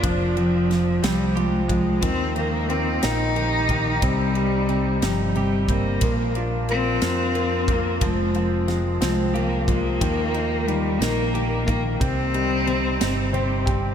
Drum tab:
RD |xxxxxx|xxxxxx|xxxxxx|xxxxxx|
SD |--oo--|---o--|---o--|---o--|
BD |o----o|o----o|o----o|o----o|

RD |xxxxxx|xxxxxx|xxxxxx|
SD |--oo--|---o--|---o--|
BD |o----o|o----o|o----o|